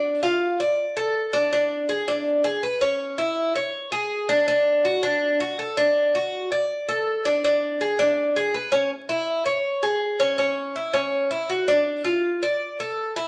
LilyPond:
\new Staff \with { instrumentName = "Cuban tres" } { \time 4/4 \key d \lydian \tempo 4 = 162 d'8 f'4 d''4 a'4 d'8 | d'4 gis'8 d'4 gis'8 b'8 cis'8~ | cis'8 e'4 cis''4 gis'4 d'8 | d'4 fis'8 d'4 fis'8 a'8 d'8~ |
d'8 fis'4 d''4 a'4 d'8 | d'4 gis'8 d'4 gis'8 b'8 cis'8 | r8 e'4 cis''4 gis'4 cis'8 | cis'4 e'8 cis'4 e'8 fis'8 d'8~ |
d'8 f'4 d''4 a'4 e'8 | }